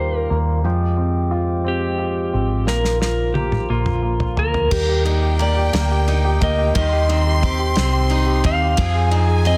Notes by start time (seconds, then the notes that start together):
Already playing: D#2 D#3 G3 A#3 F4 G4 C5
0.19 A#4
0.30 D#2 A#3
0.64 F2 F3 G#3 C4 G4
0.97 C4
1.31 F4
1.64 C4 G4
1.98 F4
2.33 G#1 C4
2.65 A#1 D#3 A#3 F4 A#4, snare
2.85 snare
3.01 F4 A#4, snare
3.34 A#3 G4, high tom
3.52 mid tom
3.69 A#1 D3 A#3 F4
3.86 mid tom
4.02 A#3
4.20 floor tom
4.36 D2 A#3 A#4, floor tom
4.54 floor tom
4.71 D#2 G3 A#3 G4 G5, kick, crash
4.88 G4
5.05 A#3 D#4, ride
5.22 G4
5.39 A#3 G4 D5, ride
5.56 G4
5.73 D2 A#3, snare, ride
5.91 G4
6.08 D#4, ride
6.25 G4
6.41 D2 A#3 D#5, kick, ride
6.58 G4
6.74 D#2 D#3 G3 G4 D#5 C6, kick, ride
6.93 G4
7.09 C4 D#4, ride
7.26 G4
7.42 C4 G4, kick, ride
7.59 G4
7.76 C2 C4, snare, ride
7.93 G4
8.10 D#4, ride
8.26 G4
8.44 D#2 C4 F5, kick, ride
8.61 G4
8.77 F2 F3 C4 G#4 G#5, kick, ride
8.94 G#4
9.11 C4 D#4, ride
9.29 G#4
9.45 C4 G#4 D#5, ride